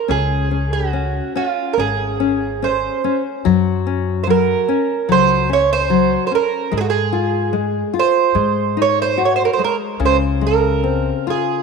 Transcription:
Already playing: twelve-string acoustic guitar A#4
0.08 upright bass C#2, nylon-string guitar C#4, twelve-string acoustic guitar G#4
0.51 nylon-string guitar C#4
0.73 twelve-string acoustic guitar F#4
0.93 nylon-string guitar C#4
1.36 nylon-string guitar C#4, twelve-string acoustic guitar F4
1.73 twelve-string acoustic guitar A#4
1.78 upright bass G#1, nylon-string guitar C#4, twelve-string acoustic guitar G#4
2.20 nylon-string guitar C#4
2.62 nylon-string guitar C#4, twelve-string acoustic guitar C5
3.04 nylon-string guitar C#4
3.45 upright bass F#2, nylon-string guitar F#3
3.87 nylon-string guitar C#4
4.24 nylon-string guitar F#3, twelve-string acoustic guitar C5
4.30 twelve-string acoustic guitar A#4
4.68 nylon-string guitar C#4
5.09 upright bass C#2, nylon-string guitar F#3, twelve-string acoustic guitar C5
5.49 nylon-string guitar C#4
5.53 twelve-string acoustic guitar C#5
5.73 twelve-string acoustic guitar C5
5.90 nylon-string guitar F#3
6.27 twelve-string acoustic guitar C5
6.31 nylon-string guitar C#4, twelve-string acoustic guitar A#4
6.71 upright bass G#2, nylon-string guitar G#3
6.78 twelve-string acoustic guitar F#4 G#4
6.90 twelve-string acoustic guitar G#4
7.13 nylon-string guitar F4
7.53 nylon-string guitar G#3
7.94 nylon-string guitar F4
7.99 twelve-string acoustic guitar C5
8.35 upright bass G#2, nylon-string guitar G#3
8.77 nylon-string guitar D#4
8.82 twelve-string acoustic guitar C#5
9.02 twelve-string acoustic guitar C5
9.18 nylon-string guitar F#4
9.25 twelve-string acoustic guitar C#5
9.36 twelve-string acoustic guitar C5
9.45 twelve-string acoustic guitar A#4
9.53 twelve-string acoustic guitar C5
9.59 nylon-string guitar G#3
9.64 twelve-string acoustic guitar A#4
10.00 upright bass C#2, nylon-string guitar C#3
10.06 twelve-string acoustic guitar C5
10.41 nylon-string guitar G#3
10.47 twelve-string acoustic guitar A#4
10.84 nylon-string guitar C4
11.27 nylon-string guitar F4, twelve-string acoustic guitar G#4

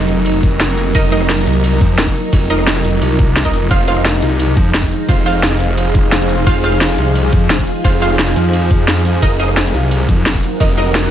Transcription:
Already playing: ambient pad F#3 D#4 A#4, synth stab D#4 A#4 D#5
0.09 detuned saw bass F1, closed hi-hat
0.26 closed hi-hat, ride bell
0.43 kick, closed hi-hat
0.60 snare, closed hi-hat, ride bell
0.78 open hi-hat
0.95 detuned saw bass F1, synth stab D#4 A#4 D#5, ambient pad F4, kick, closed hi-hat, ride bell
1.12 synth stab D#4 A#4 D#5, cross-stick, closed hi-hat
1.21 cross-stick
1.29 snare, closed hi-hat, ride bell
1.46 detuned saw bass C2, closed hi-hat
1.64 closed hi-hat, ride bell
1.81 detuned saw bass F2, kick, closed hi-hat
1.98 detuned saw bass F1, snare, closed hi-hat, ride bell
2.07 kick
2.16 open hi-hat
2.33 detuned saw bass F1, kick, closed hi-hat, ride bell
2.50 synth stab D#4 A#4 D#5, cross-stick, closed hi-hat
2.59 cross-stick
2.67 snare, closed hi-hat, ride bell
2.76 snare
2.84 detuned saw bass F1, closed hi-hat
3.02 detuned saw bass C2, closed hi-hat, ride bell
3.19 kick, closed hi-hat
3.36 snare, closed hi-hat, ride bell
3.45 synth stab D#4 A#4 D#5, kick
3.53 detuned saw bass F1, open hi-hat
3.71 detuned saw bass F1, ambient pad F3 D#4 G#4, synth stab F4 C5 F5, kick, closed hi-hat, ride bell
3.77 ambient pad G#4 F5
3.88 synth stab F4 C5 F5, ambient pad C5, cross-stick, closed hi-hat
3.97 cross-stick
4.05 snare, closed hi-hat, ride bell
4.22 detuned saw bass C2, closed hi-hat
4.40 closed hi-hat, ride bell
4.57 detuned saw bass F2, kick, closed hi-hat
4.74 detuned saw bass F1, snare, closed hi-hat, ride bell
4.83 kick
4.91 open hi-hat
5.09 detuned saw bass F1, synth stab F4 C5 F5, kick, closed hi-hat, ride bell
5.26 synth stab F4 C5 F5, cross-stick, closed hi-hat
5.43 snare, closed hi-hat, ride bell
5.52 snare
5.60 detuned saw bass F1, closed hi-hat
5.77 closed hi-hat, ride bell
5.95 kick, closed hi-hat
6.12 snare, closed hi-hat, ride bell
6.29 open hi-hat
6.46 detuned saw bass F1, ambient pad F4, synth stab F4 C5 F5, kick, closed hi-hat, ride bell
6.64 synth stab F4 C5 F5, cross-stick, closed hi-hat
6.72 cross-stick
6.81 snare, closed hi-hat, ride bell
6.98 detuned saw bass C2, closed hi-hat
7.15 closed hi-hat, ride bell
7.33 detuned saw bass F2, kick, closed hi-hat
7.50 detuned saw bass F1, snare, closed hi-hat, ride bell
7.59 kick
7.67 open hi-hat
7.84 detuned saw bass F1, synth stab F4 C5 F5, kick, closed hi-hat, ride bell
8.02 synth stab F4 C5 F5, cross-stick, closed hi-hat
8.10 cross-stick
8.19 snare, closed hi-hat, ride bell
8.28 snare
8.36 detuned saw bass F2, closed hi-hat
8.53 closed hi-hat, ride bell
8.71 kick, closed hi-hat
8.88 snare, closed hi-hat, ride bell
9.05 open hi-hat
9.22 detuned saw bass F1, ambient pad F#3 D#4 A#4, synth stab D#4 A#4 D#5, kick, closed hi-hat, ride bell
9.28 ambient pad A#4
9.37 synth stab D#4 A#4 D#5, ambient pad F#4 F#5, cross-stick, closed hi-hat
9.48 cross-stick
9.57 snare, closed hi-hat, ride bell
9.74 detuned saw bass C2, closed hi-hat
9.91 closed hi-hat, ride bell
10.09 detuned saw bass F2, kick, closed hi-hat
10.26 detuned saw bass F1, snare, closed hi-hat, ride bell
10.34 kick
10.43 open hi-hat
10.60 detuned saw bass F1, synth stab D#4 A#4 D#5, kick, closed hi-hat, ride bell
10.78 synth stab D#4 A#4 D#5, cross-stick, closed hi-hat
10.95 snare, closed hi-hat, ride bell
11.03 snare

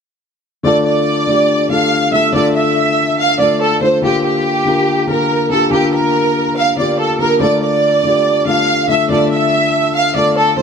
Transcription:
0.63 grand piano D3 A3 F4 A4, violin section D5
0.87 violin section D5
1.27 grand piano D3 A3 F4 G4
1.69 grand piano D3 A3 F4 A4, violin section F5
2.12 grand piano D3 A3 F4 A4, violin section E5
2.32 grand piano D3 A3 F4 A4, violin section D5
2.56 violin section E5
3.19 violin section F5
3.38 grand piano D3 A3 F4 A4, violin section D5
3.61 violin section A4
3.80 grand piano D3 A3 F4 A4, violin section C5
4.01 grand piano D3 A#3 F4 G4, violin section G4
4.25 violin section G4
4.65 grand piano D3 A#3 F4 A#4
5.07 grand piano D3 A#3 F4 A#4, violin section A#4
5.50 grand piano D3 A#3 F4 G4, violin section A4
5.71 grand piano D3 A#3 F4 A#4, violin section G4
5.94 violin section A#4
6.57 violin section F5
6.76 grand piano D3 A#3 F4 G4, violin section D5
6.99 violin section A4
7.19 grand piano D3 A#3 F4 G4, violin section A#4
7.39 grand piano D3 A3 F4 A4, violin section D5
7.63 violin section D5
8.03 grand piano D3 A3 F4 G4
8.45 grand piano D3 A3 F4 A4, violin section F5
8.88 grand piano D3 A3 F4 A4, violin section E5
9.09 grand piano D3 A3 F4 A4, violin section D5
9.32 violin section E5
9.95 violin section F5
10.14 grand piano D3 A3 F4 A4, violin section D5
10.37 violin section A4
10.57 grand piano D3 A3, violin section C5

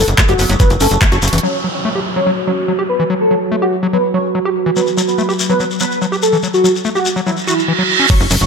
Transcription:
Already playing: synth drone F#3
0.08 analog synth bass F#1, closed hi-hat, shekere
0.18 acid bass A3, kick, clap, closed hi-hat, shekere
0.28 analog synth bass F#1, analog synth lead F#4, acid bass G4, closed hi-hat, shekere
0.39 analog synth bass F#1, synth arpeggio sound B3, open hi-hat, shekere
0.49 analog synth bass F#1, acid bass F#3, synth arpeggio sound B3, closed hi-hat, shekere
0.60 acid bass F#3, synth arpeggio sound B3, analog synth lead B4, kick, closed hi-hat, shekere
0.70 analog synth bass F#1, closed hi-hat, shekere
0.80 analog synth bass F#1, acid bass C#4, analog synth lead A4, open hi-hat, shekere
0.91 analog synth bass F#1, closed hi-hat, shekere
1.01 acid bass A3, kick, clap, closed hi-hat, shekere
1.12 analog synth bass F#1, acid bass F#4, closed hi-hat, shekere
1.22 analog synth bass F#1, closed hi-hat, shekere
1.28 closed hi-hat
1.33 analog synth bass F#1, acid bass E3, closed hi-hat, shekere
1.38 closed hi-hat
1.43 synth drone F#3, acid bass F#3, analog synth lead C#5, downlifter
1.64 acid bass F#3
1.75 analog synth lead C#5
1.85 acid bass A3
1.95 acid bass G4
2.16 acid bass F#3, analog synth lead C#5
2.27 acid bass F#3
2.47 acid bass F#3, analog synth lead C#5
2.68 acid bass F#3
2.79 acid bass G4
2.89 analog synth lead B4
2.99 acid bass E3
3.10 acid bass F#3
3.20 analog synth lead A4
3.31 acid bass F#3
3.52 acid bass A3
3.62 analog synth lead F#4, acid bass G4
3.83 acid bass F#3
3.93 acid bass F#3, analog synth lead B4
4.14 acid bass F#3, analog synth lead C#5
4.35 acid bass F#3
4.45 acid bass G4
4.66 acid bass E3
4.76 acid bass F#3, analog synth lead B4, shekere
4.87 shekere
4.97 acid bass F#3, shekere
5.08 analog synth lead B4, shekere
5.18 acid bass A3, shekere
5.29 acid bass G4, shekere
5.39 shekere
5.49 acid bass F#3, analog synth lead B4, shekere
5.60 acid bass F#3, shekere
5.71 shekere
5.80 acid bass F#3, analog synth lead B4, shekere
5.91 shekere
6.02 acid bass F#3, shekere
6.12 acid bass G4, shekere
6.22 analog synth lead A4, shekere
6.32 acid bass E3, shekere
6.43 acid bass F#3, shekere
6.54 analog synth lead F#4, shekere
6.64 acid bass F#3, shekere
6.75 shekere
6.84 acid bass A3, shekere
6.95 analog synth lead F#4, acid bass G4, shekere
7.05 shekere
7.16 acid bass F#3, shekere
7.27 acid bass F#3, analog synth lead E4, reverse cymbal, shekere
7.37 shekere
7.47 analog synth lead E4, acid bass F#4, shekere
7.59 shekere
7.68 acid bass E3
7.79 acid bass F#3
8.00 acid bass C#4
8.09 synth drone F#3, acid bass F#3, analog synth lead C#6, kick, closed hi-hat, crash, shekere
8.20 analog synth bass F#1, closed hi-hat, shekere
8.30 analog synth bass F#1, acid bass F#3, open hi-hat, shekere
8.41 analog synth bass F#1, analog synth lead C#6, closed hi-hat, shekere

